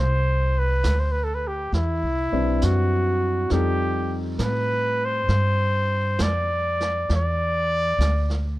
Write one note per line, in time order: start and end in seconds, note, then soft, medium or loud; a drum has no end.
0.00 0.80 C2 medium
0.00 0.60 C5 loud
0.59 1.01 B4 medium
0.84 1.70 D2 medium
0.84 snare medium
0.84 hi-hat pedal medium
0.99 1.13 C5 medium
1.12 1.25 B4 medium
1.24 1.36 A4 medium
1.35 1.49 B4 medium
1.47 1.74 G4 medium
1.72 2.04 E2 medium
1.72 2.65 E4 medium
1.72 brush sweep soft
1.72 snare soft
2.03 2.32 C2 soft
2.32 2.59 B1 medium
2.32 2.58 G3 medium
2.32 2.58 C4 medium
2.32 2.59 D4 medium
2.32 2.59 E4 medium
2.32 2.59 B4 medium
2.62 3.48 F#2 medium
2.62 3.51 F#4 medium
2.62 snare medium
2.62 hi-hat pedal soft
3.50 4.37 F2 medium
3.50 6.02 G3 soft
3.50 6.02 C4 soft
3.50 6.02 D#4 soft
3.50 6.02 F4 soft
3.50 4.19 G4 medium
3.50 6.02 A4 medium
3.50 brush sweep soft
3.50 snare soft
4.39 5.26 A2 medium
4.39 4.44 A#4 medium
4.39 snare medium
4.39 hi-hat pedal soft
4.43 5.07 B4 loud
5.05 6.24 C5 loud
5.28 6.16 G2 medium
5.28 brush sweep soft
5.28 snare soft
6.19 7.07 F2 medium
6.19 7.11 D5 loud
6.19 snare medium
6.19 hi-hat pedal soft
6.80 snare soft
7.09 7.97 E2 medium
7.09 brush sweep soft
7.09 snare soft
7.16 8.59 D5 loud
7.98 8.59 D2 medium
7.98 snare medium
7.98 hi-hat pedal soft
8.30 snare soft